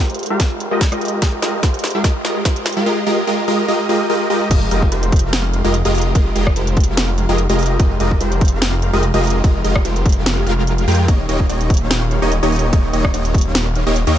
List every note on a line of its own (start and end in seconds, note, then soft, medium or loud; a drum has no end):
0.00 0.28 F1 medium
0.00 0.28 G#3 medium
0.00 0.28 F4 medium
0.00 0.28 G4 medium
0.00 0.28 A#4 medium
0.00 0.28 C5 medium
0.10 closed hi-hat soft
0.14 closed hi-hat medium
0.19 closed hi-hat soft
0.23 closed hi-hat medium
0.26 closed hi-hat medium
0.30 0.69 F1 loud
0.30 0.69 G#3 medium
0.30 0.69 F4 medium
0.30 0.69 G4 medium
0.30 0.69 A#4 medium
0.30 0.69 F5 medium
0.40 kick loud
0.40 snare medium
0.40 closed hi-hat medium
0.60 closed hi-hat medium
0.71 0.90 F1 loud
0.71 0.81 G#3 medium
0.71 0.81 F4 medium
0.71 0.82 G4 medium
0.71 0.81 A#4 medium
0.71 0.81 D#5 loud
0.81 kick medium
0.81 snare medium
0.81 closed hi-hat medium
0.92 1.20 F1 loud
0.92 1.20 G#3 medium
0.92 1.20 F4 medium
0.92 1.20 G4 medium
0.92 1.20 A#4 medium
0.92 1.20 D#5 loud
0.92 cross-stick medium
0.92 closed hi-hat medium
1.01 closed hi-hat soft
1.05 closed hi-hat medium
1.08 closed hi-hat medium
1.22 1.41 F1 loud
1.22 1.40 G#3 medium
1.22 1.40 F4 medium
1.22 1.40 G4 medium
1.22 1.40 A#4 medium
1.22 1.40 D#5 medium
1.22 kick medium
1.22 snare medium
1.22 closed hi-hat medium
1.42 1.61 F1 loud
1.42 1.61 G#3 medium
1.42 1.61 F4 medium
1.42 1.61 G4 medium
1.42 1.61 A#4 medium
1.42 1.61 D#5 loud
1.42 snare medium
1.42 closed hi-hat medium
1.63 1.93 F1 medium
1.63 1.92 G#3 medium
1.63 1.92 F4 medium
1.63 1.92 G4 medium
1.63 1.92 A#4 medium
1.63 1.92 C5 medium
1.63 kick medium
1.63 snare medium
1.63 closed hi-hat medium
1.74 closed hi-hat soft
1.79 closed hi-hat medium
1.84 snare medium
1.84 closed hi-hat soft
1.87 closed hi-hat medium
1.91 closed hi-hat medium
1.95 2.02 F1 loud
1.95 2.03 G#3 medium
1.95 2.03 F4 medium
1.95 2.03 G4 medium
1.95 2.03 A#4 medium
1.95 2.03 F5 medium
2.04 2.23 F1 medium
2.04 2.23 G#3 medium
2.04 2.23 F4 medium
2.04 2.22 G4 medium
2.04 2.23 A#4 medium
2.04 2.23 D#5 medium
2.04 kick loud
2.04 snare medium
2.04 closed hi-hat medium
2.25 2.43 F1 medium
2.25 2.43 G#3 medium
2.25 2.43 F4 medium
2.25 2.43 G4 medium
2.25 2.43 A#4 medium
2.25 2.43 D#5 loud
2.25 snare medium
2.25 closed hi-hat medium
2.45 2.75 F1 loud
2.45 2.74 G#3 medium
2.45 2.74 F4 medium
2.45 2.74 A#4 medium
2.45 2.74 C5 medium
2.45 kick loud
2.45 snare medium
2.45 closed hi-hat medium
2.56 closed hi-hat medium
2.66 snare medium
2.66 closed hi-hat soft
2.69 closed hi-hat medium
2.73 closed hi-hat medium
2.77 2.85 G#3 medium
2.77 2.85 F4 medium
2.77 2.85 G4 medium
2.77 2.85 A#4 medium
2.77 2.85 F5 medium
2.86 3.05 G#3 medium
2.86 3.05 F4 medium
2.86 3.05 G4 medium
2.86 3.05 A#4 medium
2.86 3.05 D#5 medium
3.07 3.25 G#3 medium
3.07 3.25 F4 medium
3.07 3.25 G4 medium
3.07 3.25 A#4 medium
3.07 3.25 D#5 loud
3.27 3.46 G#3 medium
3.27 3.46 F4 medium
3.27 3.46 G4 medium
3.27 3.46 A#4 medium
3.27 3.46 D#5 medium
3.48 3.66 G#3 medium
3.48 3.66 F4 medium
3.48 3.66 G4 medium
3.48 3.66 A#4 medium
3.48 3.66 D#5 loud
3.68 3.87 G#3 medium
3.68 3.87 F4 medium
3.68 3.87 G4 medium
3.68 3.87 A#4 medium
3.68 3.87 D#5 medium
3.89 4.07 G#3 medium
3.89 4.07 F4 medium
3.89 4.07 G4 medium
3.89 4.07 A#4 medium
3.89 4.07 D#5 loud
4.10 4.28 G#3 medium
4.10 4.28 F4 medium
4.10 4.28 G4 medium
4.10 4.28 A#4 medium
4.10 4.28 D#5 medium
4.30 4.48 G#3 medium
4.30 4.48 F4 medium
4.30 4.48 G4 medium
4.30 4.48 A#4 medium
4.30 4.48 D#5 loud
4.30 high tom medium
4.41 mid tom medium
4.51 4.69 F1 loud
4.51 4.69 G#3 medium
4.51 4.69 F4 medium
4.51 4.69 G4 medium
4.51 4.69 D#5 medium
4.51 kick loud
4.51 closed hi-hat medium
4.51 crash loud
4.71 4.90 F1 loud
4.71 4.90 G#3 loud
4.71 4.90 F4 medium
4.71 4.90 G4 medium
4.71 4.90 A#4 medium
4.71 4.90 D#5 loud
4.71 closed hi-hat medium
4.82 kick medium
4.92 5.21 F1 loud
4.92 5.21 G#3 medium
4.92 5.21 F4 medium
4.92 5.21 G4 medium
4.92 5.21 A#4 medium
4.92 5.21 C5 medium
4.92 closed hi-hat medium
5.03 closed hi-hat medium
5.12 kick loud
5.12 closed hi-hat soft
5.16 closed hi-hat medium
5.19 closed hi-hat medium
5.23 5.62 F1 medium
5.23 5.62 G#3 medium
5.23 5.62 F4 medium
5.23 5.62 G4 medium
5.23 5.62 A#4 medium
5.23 5.62 F5 medium
5.33 snare loud
5.33 closed hi-hat medium
5.54 closed hi-hat medium
5.64 5.83 F1 loud
5.64 5.75 G#3 medium
5.64 5.75 F4 medium
5.64 5.75 G4 medium
5.64 5.75 A#4 medium
5.64 5.75 D#5 loud
5.74 closed hi-hat medium
5.85 6.13 F1 loud
5.85 6.13 G#3 medium
5.85 6.13 F4 medium
5.85 6.13 G4 medium
5.85 6.13 A#4 medium
5.85 6.13 D#5 loud
5.85 closed hi-hat medium
5.95 closed hi-hat medium
5.95 open hi-hat medium
6.02 closed hi-hat medium
6.15 6.34 F1 loud
6.15 6.33 G#3 medium
6.15 6.33 F4 medium
6.15 6.33 G4 medium
6.15 6.33 A#4 medium
6.15 6.33 D#5 loud
6.15 kick loud
6.15 closed hi-hat medium
6.36 6.54 F1 loud
6.36 6.54 G#3 loud
6.36 6.54 F4 medium
6.36 6.54 G4 medium
6.36 6.54 A#4 medium
6.36 6.54 D#5 loud
6.36 closed hi-hat medium
6.47 kick medium
6.47 cross-stick medium
6.56 6.86 F1 loud
6.56 6.85 G#3 medium
6.56 6.85 F4 medium
6.56 6.85 G4 medium
6.56 6.85 A#4 medium
6.56 6.85 C5 medium
6.56 closed hi-hat medium
6.67 closed hi-hat medium
6.77 kick loud
6.77 closed hi-hat soft
6.80 closed hi-hat medium
6.84 closed hi-hat medium
6.88 7.27 F1 loud
6.88 7.26 G#3 medium
6.88 7.26 F4 medium
6.88 7.26 G4 medium
6.88 7.26 A#4 medium
6.88 7.26 F5 medium
6.97 snare loud
6.97 closed hi-hat medium
7.18 closed hi-hat medium
7.29 7.47 F1 loud
7.29 7.39 G#3 medium
7.29 7.39 F4 medium
7.29 7.39 G4 medium
7.29 7.39 A#4 medium
7.29 7.39 D#5 loud
7.38 closed hi-hat medium
7.50 7.78 F1 loud
7.50 7.77 G#3 medium
7.50 7.77 F4 medium
7.50 7.77 G4 medium
7.50 7.77 A#4 medium
7.50 7.77 D#5 loud
7.50 closed hi-hat medium
7.59 closed hi-hat medium
7.59 open hi-hat medium
7.66 closed hi-hat medium
7.79 7.98 F1 loud
7.79 7.98 G#3 medium
7.79 7.98 F4 medium
7.79 7.98 G4 medium
7.79 7.98 A#4 medium
7.79 7.98 D#5 medium
7.79 kick loud
7.79 closed hi-hat medium
8.00 8.19 F1 loud
8.00 8.18 G#3 loud
8.00 8.18 F4 medium
8.00 8.18 G4 medium
8.00 8.18 A#4 medium
8.00 8.18 D#5 loud
8.00 closed hi-hat medium
8.11 kick medium
8.21 8.50 F1 loud
8.21 8.50 G#3 medium
8.21 8.50 F4 medium
8.21 8.50 G4 medium
8.21 8.50 A#4 medium
8.21 8.50 C5 medium
8.21 closed hi-hat medium
8.32 closed hi-hat medium
8.41 kick loud
8.41 closed hi-hat soft
8.45 closed hi-hat medium
8.48 closed hi-hat medium
8.52 8.91 F1 loud
8.52 8.91 G#3 medium
8.52 8.91 F4 medium
8.52 8.91 G4 medium
8.52 8.91 A#4 medium
8.52 8.91 F5 medium
8.62 snare loud
8.62 closed hi-hat medium
8.82 closed hi-hat medium
8.93 9.12 F1 medium
8.93 9.03 G#3 medium
8.93 9.03 F4 medium
8.93 9.03 G4 medium
8.93 9.03 A#4 medium
8.93 9.03 D#5 loud
9.03 closed hi-hat medium
9.14 9.42 F1 loud
9.14 9.42 G#3 loud
9.14 9.42 F4 medium
9.14 9.42 G4 medium
9.14 9.42 A#4 medium
9.14 9.42 D#5 loud
9.14 closed hi-hat medium
9.23 closed hi-hat medium
9.23 open hi-hat medium
9.30 closed hi-hat medium
9.44 9.63 F1 loud
9.44 9.62 G#3 medium
9.44 9.62 F4 medium
9.44 9.62 G4 medium
9.44 9.62 A#4 medium
9.44 9.62 D#5 medium
9.44 kick loud
9.44 closed hi-hat medium
9.64 9.83 F1 loud
9.64 9.83 G#3 medium
9.64 9.83 F4 medium
9.64 9.83 G4 medium
9.64 9.83 A#4 medium
9.64 9.83 D#5 loud
9.64 closed hi-hat medium
9.76 kick medium
9.76 cross-stick medium
9.85 10.14 F1 medium
9.85 10.14 G#3 medium
9.85 10.14 F4 medium
9.85 10.14 G4 medium
9.85 10.14 A#4 medium
9.85 10.14 C5 medium
9.85 closed hi-hat medium
9.96 closed hi-hat medium
10.06 kick loud
10.06 closed hi-hat soft
10.09 closed hi-hat medium
10.12 closed hi-hat medium
10.16 10.45 F1 loud
10.16 10.45 G#3 medium
10.16 10.45 F4 medium
10.16 10.45 G4 medium
10.16 10.45 A#4 medium
10.16 10.45 F5 medium
10.26 snare loud
10.26 closed hi-hat medium
10.47 10.86 F1 loud
10.47 10.85 G#3 loud
10.47 10.85 F4 medium
10.47 10.85 G4 medium
10.47 10.85 A#4 medium
10.47 10.85 F5 loud
10.47 closed hi-hat medium
10.67 closed hi-hat medium
10.78 closed hi-hat medium
10.88 11.10 F2 loud
10.88 11.06 G#3 loud
10.88 11.06 F4 medium
10.88 11.06 G4 medium
10.88 11.06 A#4 medium
10.88 11.06 G5 loud
10.88 closed hi-hat medium
10.88 open hi-hat medium
10.95 closed hi-hat medium
11.08 11.27 D#1 loud
11.08 11.27 A#3 medium
11.08 11.27 D#4 medium
11.08 11.27 G4 medium
11.08 11.27 C#5 medium
11.08 11.27 D#5 medium
11.08 kick loud
11.08 closed hi-hat medium
11.29 11.47 D#1 medium
11.29 11.47 A#3 loud
11.29 11.47 D#4 medium
11.29 11.47 G4 medium
11.29 11.47 C#5 medium
11.29 11.47 D#5 loud
11.29 closed hi-hat medium
11.40 kick medium
11.49 11.79 D#1 loud
11.49 11.78 A#3 medium
11.49 11.78 D#4 medium
11.49 11.78 G4 medium
11.49 11.78 C#5 medium
11.49 11.78 D#5 medium
11.49 closed hi-hat medium
11.61 closed hi-hat medium
11.70 kick loud
11.70 closed hi-hat soft
11.74 closed hi-hat medium
11.77 12.19 D#4 medium
11.77 12.19 C#5 medium
11.77 closed hi-hat medium
11.81 12.20 D#1 loud
11.81 12.19 A#3 medium
11.81 12.19 G4 medium
11.81 12.19 F5 medium
11.91 snare loud
11.91 closed hi-hat medium
12.11 closed hi-hat medium
12.22 12.41 D#1 medium
12.22 12.32 A#3 medium
12.22 12.32 D#4 medium
12.22 12.32 G4 medium
12.22 12.32 C#5 medium
12.22 12.32 D#5 loud
12.32 closed hi-hat medium
12.43 12.71 D#1 loud
12.43 12.70 A#3 medium
12.43 12.70 D#4 medium
12.43 12.70 G4 medium
12.43 12.70 C#5 medium
12.43 12.70 D#5 loud
12.43 closed hi-hat medium
12.52 closed hi-hat medium
12.52 open hi-hat medium
12.59 closed hi-hat medium
12.73 12.91 D#1 loud
12.73 12.91 A#3 medium
12.73 12.91 D#4 medium
12.73 12.91 G4 medium
12.73 12.91 C#5 medium
12.73 12.91 D#5 medium
12.73 kick loud
12.73 closed hi-hat medium
12.93 13.12 D#1 loud
12.93 13.12 A#3 loud
12.93 13.12 D#4 medium
12.93 13.12 G4 medium
12.93 13.12 C#5 medium
12.93 13.12 D#5 loud
12.93 closed hi-hat medium
13.04 kick medium
13.04 cross-stick medium
13.14 13.43 D#1 loud
13.14 13.43 A#3 medium
13.14 13.43 D#4 medium
13.14 13.43 G4 medium
13.14 13.43 C#5 medium
13.14 13.43 D#5 medium
13.14 closed hi-hat medium
13.25 closed hi-hat medium
13.34 kick loud
13.34 closed hi-hat soft
13.38 closed hi-hat medium
13.41 closed hi-hat medium
13.45 13.84 D#1 loud
13.45 13.84 A#3 medium
13.45 13.84 D#4 medium
13.45 13.84 G4 medium
13.45 13.84 C#5 medium
13.45 13.84 F5 medium
13.55 snare loud
13.55 closed hi-hat medium
13.76 closed hi-hat medium
13.87 14.05 D#1 loud
13.87 13.97 A#3 medium
13.87 13.97 D#4 medium
13.87 13.97 G4 medium
13.87 13.97 C#5 medium
13.87 13.97 D#5 loud
13.96 closed hi-hat medium
14.07 14.18 D#2 loud
14.07 14.18 A#3 medium
14.07 14.18 D#4 medium
14.07 14.18 G4 medium
14.07 14.18 C#5 medium
14.07 14.18 D#5 loud
14.07 closed hi-hat medium